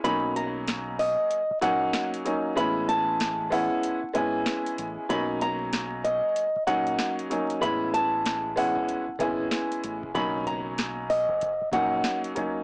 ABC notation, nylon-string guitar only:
X:1
M:4/4
L:1/16
Q:"Swing 16ths" 1/4=95
K:Bdor
V:1 name="Nylon-string guitar"
b2 ^a4 ^d4 f3 z3 | b2 a4 f4 g6 | b2 ^a4 ^d4 f3 z3 | b2 a4 f4 g6 |
b2 ^a4 ^d4 f3 z3 |]